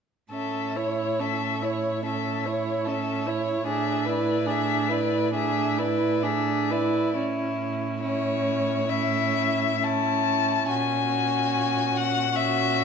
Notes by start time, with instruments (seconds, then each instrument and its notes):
0.31 cello A2, viola C#4, violin A4 E5
0.75 viola E4, violin C#5
1.20 viola C#4, violin A4 E5
1.63 viola E4, violin C#5
2.04 viola C#4, violin A4 E5
2.46 viola E4, violin C#5
2.85 viola C#4, violin A4 E5
3.27 viola E4, violin C#5
3.66 cello A2, viola D4, violin G#4 E5
4.05 viola E4, violin B4 D5
4.46 viola D4, violin G#4 E5
4.89 viola E4, violin B4 D5
5.33 viola D4, violin G#4 E5
5.78 viola E4, violin B4 D5
6.23 viola D4, violin G#4 E5
6.71 viola E4, violin B4 D5
7.16 cello A2, viola C#4, violin E4
8.02 viola C#4, violin E4 C#5
8.88 viola C#4, violin E4 E5
9.82 viola C#4, violin E4 A5
10.69 cello A#2, viola C#4, violin F#4 G#5
11.97 violin F#5
12.34 viola C#4, violin F#4 E5